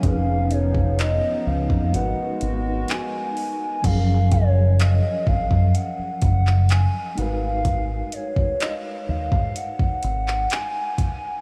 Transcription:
<<
  \new Staff \with { instrumentName = "Soft synth lead" } { \time 4/4 \key gis \dorian \tempo 4 = 63 eis''8 cis''8 dis''8 eis''8 fis''4 gis''4 | eis''8 cis''8 dis''8 eis''8 fis''4 gis''8 eis''8~ | eis''8 cis''8 dis''8 eis''8 fis''4 gis''4 | }
  \new Staff \with { instrumentName = "Tine electric piano" } { \time 4/4 \key gis \dorian <eis cis' dis' gis' b'>2 <gis dis' fis' ais' b'>2 | <eis fis cis' gis' ais'>2.~ <eis fis cis' gis' ais'>8 <gis dis' fis' ais' b'>8~ | <gis dis' fis' ais' b'>2.~ <gis dis' fis' ais' b'>8 r8 | }
  \new Staff \with { instrumentName = "Analog synth pad" } { \time 4/4 \key gis \dorian << { <eis cis' dis'>2 <gis fis'>2 | r1 | r1 | } \\ { b1 | r1 | r1 | } >> }
  \new Staff \with { instrumentName = "Fingered electric bass" } { \clef bass \time 4/4 \key gis \dorian eis,,4~ eis,,16 r16 cis,16 eis,16 gis,,16 r16 gis,,8 r4 | fis,,4~ fis,,16 r16 gis,,16 fis,16 r8 fis,,8. r16 gis,,8~ | gis,,8 r4 dis,16 gis,16 r8 gis,,8 r4 | }
  \new DrumStaff \with { instrumentName = "Drums" } \drummode { \time 4/4 <hh bd>8 hh16 bd16 <hc hh>8. bd16 hh8 hh8 <hc hh>8 hho8 | <cymc hh bd>8 <hh bd>8 <hc hh>8 bd16 bd16 hh8 <hh bd>16 hc16 <hc hh>8 hh8 | <hh bd>8 hh16 bd16 <hc hh>8. bd16 hh16 bd16 hh16 hc16 <hc hh>8 <hh bd>8 | }
>>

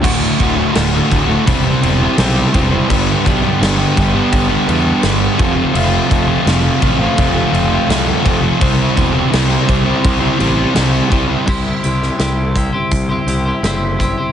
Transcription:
<<
  \new Staff \with { instrumentName = "Clean electric guitar" } { \time 4/4 \key c \lydian \tempo 4 = 84 r1 | r1 | r1 | r1 |
<c g c' e' g' c''>16 <c' e' g' c''>16 <c' e' g' c''>8 <c g c' e' g' c''>8 <c' e' g' c''>16 <c' e' g' c''>8 <c' e' g' c''>16 <c' e' g' c''>16 <c' e' g' c''>16 <c g c' e' g' c''>8 <c' e' g' c''>16 <c' e' g' c''>16 | }
  \new Staff \with { instrumentName = "Distorted electric guitar" } { \time 4/4 \key c \lydian <d, a, d a fis'>8 <a, d a fis'>16 <d a fis'>16 <d, a, d a fis'>16 <d a fis'>16 <a, d a fis'>16 <d a fis'>16 <c g c' e' g' c''>16 <c' e' g' c''>16 <c' e' g' c''>8 <c g c' e' g' c''>8 <c' e' g' c''>16 <c' e' g' c''>16 | <g, d g b d' g'>8 <g b d' g'>16 <g b d' g'>16 <g, d g b d' g'>16 <g b d' g'>16 <g b d' g'>16 <g b d' g'>8 <g b d' g'>16 <g b d' g'>8 <g, d g b d' g'>8 <f, c f a c' f'>16 <f a c' f'>16 | <f, c f a c' f'>8 <f a c' f'>16 <f a c' f'>16 <f, c f a c' f'>16 <f a c' f'>16 <f a c' f'>16 <f a c' f'>8 <f a c' f'>16 <f a c' f'>8 <f, c f a c' f'>8 <f a c' f'>16 <f a c' f'>16 | <c g c' e' g' c''>8 <c' e' g' c''>16 <c' e' g' c''>16 <c g c' e' g' c''>16 <c' e' g' c''>16 <c' e' g' c''>16 <c' e' g' c''>8 <c' e' g' c''>16 <c' e' g' c''>8 <c g c' e' g' c''>8 <c' e' g' c''>16 <c' e' g' c''>16 |
r1 | }
  \new Staff \with { instrumentName = "Fingered electric bass" } { \clef bass \time 4/4 \key c \lydian d,,8 d,,8 d,,8 d,,8 e,,8 e,,8 b,,8 e,,8 | g,,8 b,,8 g,,8 g,,8 g,,8 e,8 g,,8 f,,8 | f,,8 f,,8 f,,8 a,,8 f,,8 f,,8 c,8 f,,8 | c,8 e,,8 c,8 c,8 c,8 a,,8 c,8 c,8 |
c,8 c,8 c,4 c,8 c,8 fis,,4 | }
  \new DrumStaff \with { instrumentName = "Drums" } \drummode { \time 4/4 <cymc bd>8 <cymc bd>8 <cymc sn>8 <cymc bd>8 <cymc bd>8 cymc8 <cymc sn>8 <cymc bd>8 | <cymc bd>8 <cymc bd>8 <cymc sn>8 <cymc bd>8 <cymc bd>8 cymc8 <cymc sn>8 <cymc bd>8 | cymc8 <cymc bd>8 <cymc sn>8 <cymc bd>8 <cymc bd>8 cymc8 <cymc sn>8 <cymc bd>8 | <cymc bd>8 <cymc bd>8 <cymc sn>8 <cymc bd>8 <cymc bd>8 cymc8 <cymc sn>8 <cymc bd>8 |
<cymc bd>8 hh16 sn16 <hh sn>8 <hh bd>8 <hh bd>8 hh8 <hh sn>8 <hh bd>8 | }
>>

